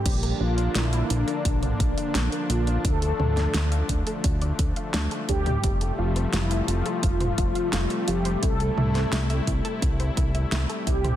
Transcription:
Already playing: G4
0.05 A#1 D3 F3 A#3 D4, kick, closed hi-hat, crash
0.23 A#4, closed hi-hat
0.40 A#1 D4 F4
0.58 D5, closed hi-hat
0.75 A#1 D4 E4, snare, closed hi-hat
0.93 F5, closed hi-hat
1.10 A#1 D4, closed hi-hat
1.28 A#4, closed hi-hat
1.45 A#1 D4, kick, closed hi-hat
1.63 D5, closed hi-hat, mid tom
1.80 A#1 D4, kick, closed hi-hat
1.98 F5, closed hi-hat
2.15 A#1 D4, snare, closed hi-hat
2.32 A#4, closed hi-hat
2.50 A#1 D4 F4, closed hi-hat
2.67 D5, closed hi-hat
2.85 D2 D3 A3 D4 A4, kick, closed hi-hat
3.02 A4, closed hi-hat
3.19 D2 D4, mid tom
3.37 D5, snare, closed hi-hat
3.54 D2 D4, snare, closed hi-hat
3.72 F5, closed hi-hat
3.89 D2 D4, kick, closed hi-hat
4.07 A4, closed hi-hat
4.24 D2 D4, kick, closed hi-hat
4.42 D5, closed hi-hat
4.59 D2 D4, kick, closed hi-hat
4.76 F5, closed hi-hat
4.94 D2 D4, snare, closed hi-hat
5.11 A4, closed hi-hat
5.29 D2 D4 G4, kick, closed hi-hat
5.46 D5, closed hi-hat, mid tom
5.64 F1 C3 F3 G3 F4, kick, closed hi-hat
5.81 A4, closed hi-hat
5.98 F1 F4
6.16 C5, closed hi-hat
6.33 F1 E4 F4, snare, closed hi-hat
6.51 F5, closed hi-hat
6.68 F1 F4, closed hi-hat
6.86 A4, closed hi-hat
7.03 F1 F4, kick, closed hi-hat
7.20 C5, closed hi-hat, mid tom
7.38 F1 F4, kick, closed hi-hat
7.55 F5, closed hi-hat
7.73 F1 F4, snare, closed hi-hat
7.90 A4, closed hi-hat
8.08 F1 F4 G4, closed hi-hat
8.25 C5, closed hi-hat
8.42 C2 E4 A4, kick, closed hi-hat
8.60 A4, closed hi-hat
8.78 C2 E4, mid tom
8.95 C5, snare, closed hi-hat
9.12 C2 E4, snare, closed hi-hat
9.30 E5, closed hi-hat
9.47 C2 E4, kick, closed hi-hat
9.65 A4, closed hi-hat
9.82 C2 E4, kick, closed hi-hat
10.00 C5, closed hi-hat
10.17 C2 E4, kick, closed hi-hat
10.35 E5, closed hi-hat
10.52 C2 E4, snare, closed hi-hat
10.70 A4, closed hi-hat
10.87 C2 E4 G4, kick, closed hi-hat
11.04 C5, closed hi-hat, mid tom

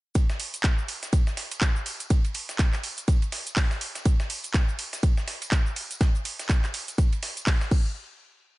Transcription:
0.15 kick, closed hi-hat, ride, tambourine, cabasa
0.30 snare, cabasa
0.40 open hi-hat, ride, tambourine
0.54 closed hi-hat, tambourine, cabasa
0.64 kick, snare, clap, closed hi-hat, ride, cabasa
0.78 cabasa
0.88 open hi-hat, ride, tambourine
1.03 snare, closed hi-hat, tambourine, cabasa
1.12 kick, closed hi-hat, ride, tambourine, cabasa
1.27 snare, cabasa
1.37 snare, open hi-hat, ride, tambourine
1.51 closed hi-hat, ride, tambourine, cabasa
1.61 kick, snare, clap, closed hi-hat, ride, tambourine, cabasa
1.76 cabasa
1.86 open hi-hat, ride, tambourine
2.00 closed hi-hat, tambourine, cabasa
2.10 kick, closed hi-hat, ride, cabasa
2.25 ride, cabasa
2.34 open hi-hat, ride, tambourine
2.49 snare, closed hi-hat, tambourine, cabasa
2.59 kick, snare, clap, closed hi-hat, ride, tambourine, cabasa
2.73 snare, clap, cabasa
2.83 open hi-hat, ride, tambourine
2.97 closed hi-hat, tambourine, cabasa
3.08 kick, closed hi-hat, ride, tambourine, cabasa
3.22 ride, cabasa
3.32 snare, open hi-hat, ride, tambourine
3.47 closed hi-hat, tambourine, cabasa
3.56 kick, snare, clap, closed hi-hat, open hi-hat, tambourine, cabasa
3.71 snare, cabasa
3.81 open hi-hat, ride, tambourine
3.95 snare, closed hi-hat, tambourine, cabasa
4.05 kick, closed hi-hat, ride, tambourine, cabasa
4.20 snare, cabasa
4.30 open hi-hat, ride, tambourine
4.44 closed hi-hat, tambourine, cabasa
4.54 kick, snare, clap, closed hi-hat, ride, cabasa
4.69 cabasa
4.79 open hi-hat, ride, tambourine
4.93 snare, closed hi-hat, tambourine, cabasa
5.02 kick, closed hi-hat, ride, tambourine, cabasa
5.17 snare, cabasa
5.28 snare, open hi-hat, ride, tambourine
5.42 closed hi-hat, ride, tambourine, cabasa
5.52 kick, snare, clap, closed hi-hat, ride, cabasa
5.66 cabasa
5.76 open hi-hat, ride, tambourine
5.91 closed hi-hat, tambourine, cabasa
6.01 kick, snare, closed hi-hat, ride, tambourine, cabasa
6.15 cabasa
6.25 open hi-hat, ride, tambourine
6.39 snare, closed hi-hat, tambourine, cabasa
6.49 kick, snare, clap, closed hi-hat, ride, cabasa
6.64 snare, clap, cabasa
6.74 open hi-hat, ride, tambourine
6.88 closed hi-hat, tambourine, cabasa
6.98 kick, closed hi-hat, ride, cabasa
7.13 ride, cabasa
7.23 snare, open hi-hat, ride, tambourine
7.37 closed hi-hat, tambourine, cabasa
7.47 kick, snare, clap, closed hi-hat, open hi-hat, cabasa
7.61 snare, cabasa
7.71 kick, crash, tambourine
7.86 tambourine

